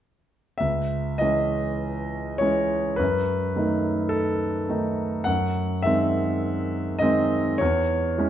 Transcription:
grand piano
0.58 C#2 E5
1.18 E3 G#3 C#4 D#5
2.38 E3 G#3 C#4 C#5
2.96 F#2 B4
3.56 D#3 A3 D#4
4.09 A4
4.69 D#3 A3 D#4
5.24 F#2 F#5
5.82 D#3 G#3 C4 E5
6.99 D#3 G#3 C4 D#5
7.58 E2 C#5
8.18 E3 G#3 C#4

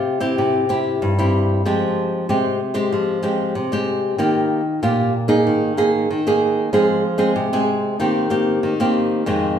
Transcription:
nylon-string guitar
Already playing: C3 C4 F4 G4
0.20 C4 E4 G4
0.38 C3
0.69 C4 E4 G4
1.02 G2
1.19 C4 E4 G4
1.66 F3 G#3 C4 G4
2.29 C3 G#3 C4 G4
2.74 G#3 C4 G4
2.92 F3
3.23 G#3 C4 G4
3.55 C3
3.72 G#3 C4 G4
4.18 D#3 A#3 F4 G4
4.83 A#2 A#3 F4 G4
5.28 A#3 D#4 G#4
5.47 D#3
5.77 A#3 D#4 G#4
6.11 D#3
6.27 A#3 D#4 G#4
6.73 F3 G#3 C4 G#4
7.18 G#3 C4 G#4
7.36 C3
7.53 G#3 C4 G#4
8.00 D#3 A#3 C4 G4
8.30 A#3 C4 G4
8.63 D#3
8.80 A#3 C4 G4
9.26 F2 D#3 G#3 C4

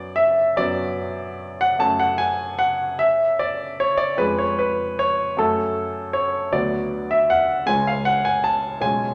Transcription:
grand piano
Already playing: F#2 F#3 B3 F#4 D5
0.16 E5
0.56 F#2 F#3 B3 F#4 D5
1.61 F#5
1.79 F#2 A3 C#4 F#4 A5
2.00 F#5
2.18 G#5
2.59 F#5
2.99 E5
3.39 D5
3.80 C#5
3.97 D5
4.17 F2 G#3 C#4 G#4 B4
4.39 C#5
4.59 B4
4.99 C#5
5.37 F#2 A3 C#4 F#4 A4
6.13 C#5
6.52 D2 F#3 B3 F#4 D5
7.11 E5
7.30 F#5
7.66 C#2 G#3 C#4 F4 G#5
7.87 F5
8.05 F#5
8.25 G#5
8.44 A5
8.81 B1 G#3 C#4 F4 G#5

